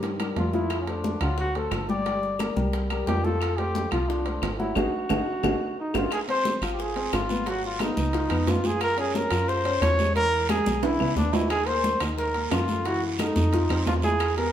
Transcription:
Already playing: G2 G3 G4 A#4
0.03 low bongo, high conga, high timbale
0.20 G3 G4 A#4, low bongo, high conga, high timbale, claves
0.36 F2 F4, high conga, high timbale, low timbale
0.53 F3 E4 F4 F5, low bongo, high conga
0.70 high bongo, high conga, high timbale, claves
0.81 C#4
0.87 A3 D4 A4 C5, high bongo, high conga, high timbale
1.04 high bongo, high conga, low timbale
1.21 D2 F#3 F4 F#4 F#5, high conga, high timbale, claves
1.37 F#4, high bongo, high conga
1.55 A3 A4 C5, high bongo, high conga, high timbale
1.71 G1, high bongo, low bongo, high conga, high timbale, low timbale, claves
1.89 G3 G4 D5 G5, high bongo, high conga
2.06 G3 G4 G5, high bongo, high conga, high timbale
2.23 high bongo, high conga
2.39 A#3 A#4 D5, high bongo, high conga, high timbale, low timbale, claves
2.56 C2 G3 G4 A#4, high conga
2.73 high bongo, high conga, high timbale
2.90 G3 G4 A#4, high bongo, high conga, high timbale, claves
3.07 F2 G4, high bongo, low bongo, high conga, high timbale, low timbale
3.24 F3 F4 A4 F5, high bongo, high conga
3.41 high bongo, high conga, high timbale, claves
3.58 A3 G4 A4 C5, high bongo, high conga, high timbale
3.75 high bongo, high conga, low timbale
3.91 C2 F3 F4 F5, high conga, high timbale, claves
4.09 D4, high bongo, high conga
4.25 A3 A4 C5, high bongo, high conga, high timbale
4.42 G#1, high bongo, low bongo, high conga, high timbale, low timbale, claves
4.59 F#3 E4 F#4 F#5, high bongo, high conga
4.75 G#1 D#4 F#4 G#4, high bongo, high conga, high timbale, claves
5.09 G#1 D#4 F#4 G#4, high bongo, high conga, high timbale, claves
5.43 G#1 D#4 F#4 G#4, high bongo, high conga, high timbale, claves
5.80 D#4
5.94 G#1 D#4 F4 F#4 G#4, high bongo, high conga, high timbale, claves
6.11 G#4, high bongo, high conga, high timbale, long guiro, claves
6.28 C4 C5, high bongo, high conga, high timbale
6.45 high bongo, high conga, low timbale, short guiro
6.62 G#1 F4 F5, high conga, high timbale, short guiro, claves
6.72 G4
6.79 G#4, high bongo, high conga, long guiro
6.96 C4 C5, high bongo, high conga, high timbale
7.12 G#1 F4, high bongo, low bongo, high conga, high timbale, low timbale, short guiro, claves
7.29 B3 B4, high bongo, high conga, short guiro
7.46 F#3 F#4, high bongo, high conga, high timbale, long guiro
7.64 F4, high bongo, high conga
7.79 B3 D#4 B4, high bongo, high conga, high timbale, low timbale, short guiro, claves
7.97 C#2, high conga, short guiro
8.13 F3 F4, high bongo, high conga, high timbale, long guiro
8.30 F2 B3 B4, high bongo, high conga, high timbale, claves
8.47 F#2 F4, high bongo, low bongo, high conga, high timbale, low timbale, short guiro
8.64 F4 G#4 F5, high bongo, high conga, short guiro
8.80 A#4, high bongo, high conga, high timbale, long guiro, claves
8.97 C#4 G#4 C#5, high bongo, high conga, high timbale
9.14 A#4, high bongo, high conga, low timbale, short guiro
9.31 F#2 F4 F5, high conga, high timbale, short guiro, claves
9.48 C5, high bongo, high conga, long guiro
9.65 C#4 C#5, high bongo, high conga, high timbale
9.82 E2 C#5, high bongo, low bongo, high conga, high timbale, low timbale, short guiro, claves
9.99 G#3 G#4, high bongo, high conga, short guiro
10.15 E3 E4 A#4, high bongo, high conga, high timbale, long guiro
10.33 high bongo, high conga
10.49 G#3 G#4, high bongo, high conga, high timbale, low timbale, short guiro, claves
10.66 B1, high conga, short guiro
10.83 E3 E4, high bongo, high conga, high timbale, long guiro
11.00 C#2 B3 B4, high bongo, high conga, high timbale, claves
11.16 D#2 D4, high bongo, low bongo, high conga, short guiro
11.32 D#4 E4 D#5, high bongo, high conga, low timbale, short guiro
11.50 G#4, high bongo, high conga, high timbale, long guiro, claves
11.66 A#3 A#4 C5, high bongo, high conga, high timbale
11.84 high bongo, high conga, low timbale, short guiro
12.00 D#2 D#4 D#5, high conga, high timbale, short guiro, claves
12.18 A#4, high bongo, high conga, long guiro
12.34 A#3 A#4, high bongo, high conga, high timbale
12.51 F#2 F4, high bongo, low bongo, high conga, high timbale, low timbale, short guiro, claves
12.68 A3 A4, high bongo, high conga, short guiro
12.85 E3 E4 F#4, high bongo, high conga, high timbale, long guiro
13.02 high bongo, high conga
13.19 A3 D#4 A4, high bongo, high conga, high timbale, low timbale, short guiro, claves
13.36 F2, high conga, short guiro
13.52 F3 F4, high bongo, high conga, high timbale, long guiro
13.69 F2 C4 C5, high bongo, high conga, high timbale, claves
13.86 E2 F4, high bongo, low bongo, high conga, high timbale, low timbale, short guiro
14.02 E4 G#4 E5, high bongo, high conga, short guiro
14.19 high bongo, high conga, high timbale, long guiro, claves
14.37 B3 G#4 A#4, high bongo, high conga, high timbale

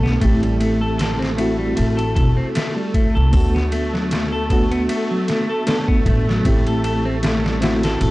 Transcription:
Already playing: B1 A3 B3 D4 G4 A4
0.03 B3, snare
0.21 A1 A3 C4 E4 G4, kick, ride
0.43 G3, ride
0.60 A3, ride
0.81 A4
0.98 A4, snare, ride
1.19 C4, snare
1.36 A3 C4 E4 F#4, ride
1.59 G3
1.76 A1 A3, ride
1.97 A4, ride
2.15 E1 A4, kick, ride
2.37 C4
2.55 A3, snare, ride
2.76 G3
2.94 A3, kick, ride
3.15 C2 A4
3.32 D2 A3 B3 D4 F#4 A4, kick, open hi-hat
3.55 B3, snare
3.72 A3, ride
3.93 F#3, snare
4.11 A3, snare, ride
4.32 A4
4.49 A3 B3 D4 F#4 A4, kick, ride
4.71 B3, ride
4.89 A3, ride
5.11 F#3
5.28 A3, snare, ride
5.50 A4
5.67 A3 B3 D4 A4, snare, ride
5.88 B3, kick
6.06 A1 A3, kick, ride
6.29 F#3, snare
6.44 A1 A3 C4 E4 G4, kick, ride
6.67 A4, ride
6.84 A4, ride
7.05 C4
7.23 A3, snare, ride
7.44 G3, snare
7.61 A3 C4 E4 F#4, snare, ride
7.83 A4, snare, ride
8.01 A1 A4, ride

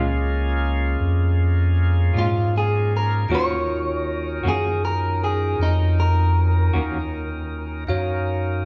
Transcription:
Already playing: C#2 A#3 C#4 F4 G#4 D#5
1.00 F2
2.14 G#2 A#2 G#3 C#4 F4
2.19 F4
2.58 G#4
2.97 A#4
3.28 D#2 D#3 A#3 C#4 D#4 F4 F#4 A#4 C#5
3.35 C#5
4.43 F#2 D#3 A#3 C#4 F#4
4.48 G#4
4.85 A#4
5.24 G#4
5.59 F2 D#4
6.00 A#4
6.73 D#2 D#3 A#3 C#4 F#4
7.87 F#2 C#4 D#4 F#4 A#4 C#5 F5

